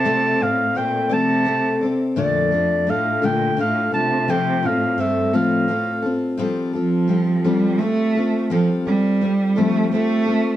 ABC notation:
X:1
M:6/8
L:1/8
Q:3/8=57
K:F
V:1 name="Clarinet"
a f g a2 z | d2 f g f a | g f e f2 z | z6 |
z6 |]
V:2 name="Steel-string acoustic guitar"
[F,A,CAd] [CAd] [A,CAd] [F,A,CAd] [A,CAd] [CAd] | [B,,D,A,DFA] [A,DFA] [A,DFA] [B,,D,A,DFA] [A,DFA] [A,DFA] | [F,A,CFA] [CFA] [A,CFA] [F,A,CFA] [A,CFA] [CFA] | [F,G,CFA] [CFA] [G,CFA] [F,G,CFA] [G,CFA] [CFA] |
[F,G,CFA] [CFA] [G,CFA] [F,G,CFA] [G,CFA] [CFA] |]
V:3 name="Cello" clef=bass
C, A,, B,, C,2 z | F,,2 A,, B,, A,, C, | C, A,, G,, A,,2 z | z F,2 G, A,2 |
F, G,2 A, A,2 |]